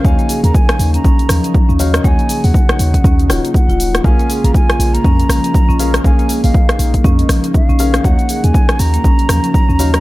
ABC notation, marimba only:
X:1
M:4/4
L:1/16
Q:"Swing 16ths" 1/4=120
K:Ebdor
V:1 name="Marimba"
B, B, A z4 D D z F, D z D z2 | B, B, A z4 D D z F B, z F z2 | B, B, A z4 B, D z F, D z D z2 | B, B, A z4 B, D z F, D z D z2 |
B, B, A z4 B, D z F, D z D z2 |]